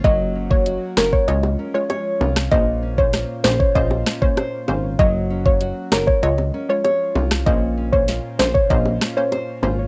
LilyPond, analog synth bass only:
\new Staff \with { instrumentName = "Analog synth bass" } { \clef bass \time 4/4 \key bes \minor \tempo 4 = 97 ges,,4~ ges,,16 r16 ges,,16 r16 des,8 r4 c,8 | bes,,4~ bes,,16 r16 bes,,16 r16 bes,,8 r4 aes,,8 | ges,,4~ ges,,16 r16 ges,,16 r16 des,8 r4 c,8 | bes,,4~ bes,,16 r16 bes,,16 r16 bes,,8 r4 aes,,8 | }